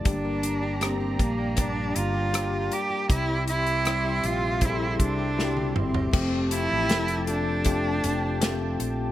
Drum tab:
CC |----------------|----------------|x---------------|
HH |x-x-x-x-x-x-x-x-|x-xxx-x-x-x-----|--x-xxx-x-x-x-x-|
SD |----r-------r---|----r-------o---|----o-------o---|
T1 |----------------|-------------o--|----------------|
T2 |----------------|--------------o-|----------------|
FT |----------------|---------------o|----------------|
BD |o-----o-o-------|o-------o-o-----|o-------o-------|